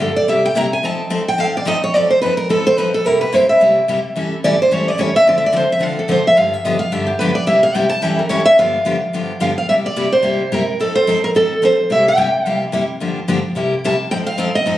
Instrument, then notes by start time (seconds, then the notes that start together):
steel-string acoustic guitar
0.01 A4
0.16 D5
0.28 C3 G3 A#3 E4 G4 E5
0.46 G5
0.55 C3 G3 A#3 E4 G4 A#5
0.73 G#5
0.83 F3 C4 D#4 A4 A5
1.10 F3 C4 D#4 A4
1.28 G5
1.38 F3 C4 D#4 A4 F5
1.57 D5
1.65 F3 C4 D#4 A4 D#5
1.84 C#5
1.94 F3 C4 D#4 A4 D5
2.10 C5
2.22 F3 C4 D#4 A4 B4
2.37 A#4
2.49 F3 C4 D#4 A4
2.67 C5
2.78 F3 C4 D#4 A4 B4
2.94 A4
3.05 C3 G3 A#3 E4 G4 A#4
3.21 B4
3.33 C3 G3 A#3 E4 G4 C5
3.49 E5
3.60 C3 G3 A#3 E4 G4
3.88 C3 G3 A#3 E4 G4
4.16 A2 E3 G3 C#4 E4 A4
4.44 A2 E3 G3 C#4 E4 A4 D5
4.62 C5
4.71 A2 E3 G3 C#4 E4 A4 C#5
4.88 D5
4.98 A2 E3 G3 C#4 E4 A4 C#5
5.16 E5
5.27 D3 F3 C4 D4 A4 D5
5.38 E5
5.46 D5
5.52 D3 F3 C4 D4 A4
5.56 C5
5.72 E5
5.79 D3 F3 C4 D4 A4 F5
5.99 A4
6.08 D3 F3 C4 D4 A4 C5
6.27 E5
6.36 G2 D3 F3 B3 D4 G4 F5
6.53 E5
6.65 G2 D3 F3 B3 D4 G4 D#5
6.79 F5
6.92 G2 D3 F3 B3 D4 G4 E5
7.07 G4
7.19 G2 D3 F3 B3 D4 G4 B4
7.35 D5
7.47 C3 G3 A#3 E4 G4 E5
7.63 F5
7.75 C3 G3 A#3 E4 G4 G5
7.89 A5
8.02 A2 E3 G3 C#4 E4 A4 G5
8.19 A#4
8.29 A2 E3 G3 C#4 E4 A4 C#5
8.46 E5
8.58 G2 D3 F3 B3 D4 G4 F5
8.85 G2 D3 F3 B3 D4 G4
9.13 G2 D3 F3 B3 D4 G4
9.40 G2 D3 F3 B3 D4 G4 F5
9.58 F5
9.69 C3 G3 A#3 E4 G4 E5
9.86 D5
9.96 C3 G3 A#3 E4 G4
10.12 C5
10.22 C3 G3 A#3 E4 G4
10.52 C3 G3 A#3 E4 G4 A#4
10.80 F3 C4 D#4 A4
10.95 C5
11.07 F3 C4 D#4 A4
11.24 A#4
11.35 F3 C4 D#4 A4
11.62 F3 C4 D#4 A4 C5
11.90 C3 G3 A#3 E4 G4 E5
12.08 G5
12.17 C3 G3 A#3 E4 G4
12.46 C3 G3 A#3 E4 G4
12.72 C3 G3 A#3 E4 G4
13.00 G2 D3 F3 A#3 D4 G4
13.28 G2 D3 F3 A#3 D4 G4
13.55 C3 G3 A#3 E4 G4
13.84 C3 G3 A#3 E4 G4 A5
14.11 F3 C4 D#4 A4 G5
14.27 F5
14.38 F3 C4 D#4 A4
14.55 D#5
14.66 F3 C4 D#4 A4